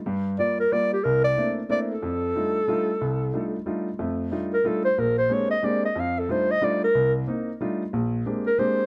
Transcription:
X:1
M:3/4
L:1/8
Q:"Swing" 1/4=183
K:Fmix
V:1 name="Clarinet"
z2 d B d G | B d2 z d A- | A6- | A4 z2 |
z3 B A c | B c _d e =d e | f A c e d B- | B z4 z |
z3 B c2 |]
V:2 name="Grand piano"
[G,,G,]2 [G,B,F] z [G,B,F] z | C,,2 [A,B,CD=E] z [A,B,CDE] z | F,,2 [G,A,DEF] z [G,A,DEF] z | C,,2 [G,A,DEF] z [G,A,DEF] z |
[F,,A,]2 [G,A,DEF] z [G,A,DEF] z | B,,,2 [_A,B,CDG] z [A,B,CDG] z | F,,2 [G,A,DEF] z [G,A,DEF] z | C,,2 [B,CE] z [G,A,DEF] z |
B,,,2 [_A,B,CDG] z [A,B,CDG] z |]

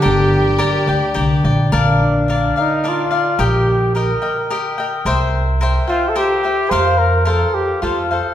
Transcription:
X:1
M:3/4
L:1/16
Q:1/4=108
K:Gm
V:1 name="Cavaquinho"
[GBdg]4 [GBdg]2 [Gdg]2 [GBdg]2 [Gdg]2 | [K:Bb] [DBdf]4 [DBdf]2 [Bdf]2 [DBdf]2 [Bdf]2 | [GBeg]4 [GBeg]2 [Beg]2 [GBeg]2 [Beg]2 | [Bc=eg]4 [Bceg]2 [ceg]2 [Bceg]2 [ceg]2 |
[FBcf]4 [FBcf]4 [FAcf]2 [Acf]2 |]
V:2 name="Trumpet"
G8 z4 | [K:Bb] z2 D4 E2 F4 | G4 B4 z4 | z6 F3/2 A/2 G4 |
c2 B2 A2 G2 F3 z |]
V:3 name="Violin section"
G8- G2 z2 | [K:Bb] z12 | z12 | z12 |
z12 |]
V:4 name="Harp" clef=bass
D,2 G,2 z2 D,2 D,2 G,2 | [K:Bb] z12 | z12 | z12 |
z12 |]
V:5 name="Upright bass" clef=bass
G,,,6 D,,2 C,,2 B,,,2 | [K:Bb] B,,,8 z4 | B,,,8 z4 | C,,8 z4 |
F,,8 F,,4 |]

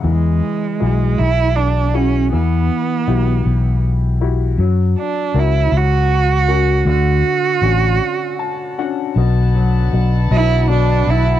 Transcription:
X:1
M:6/8
L:1/8
Q:3/8=53
K:Bm
V:1 name="String section"
z6 | z6 | z6 | z6 |
[D,Bfa]6 |]
V:2 name="Upright piano"
E,2 [EF^G]2 z [EFG] | E,2 [EFG]2 z [EFG] | F,2 [CF^A]2 z [CFA] | D,2 [CDF]2 a [CDFf] |
B,, F, B,, F, B,, F, |]
V:3 name="Cello"
^G,3 E D C | B,4 z2 | z D E F3 | F4- F z |
z3 E D E |]
V:4 name="Fingered electric bass" clef=bass
E,, z B,,, B,,,3 | E,, z B,,, B,,,3 | F,, z C,, C,,3 | D,, z A,,, z3 |
B,,,2 B,,, B,,,2 B,,, |]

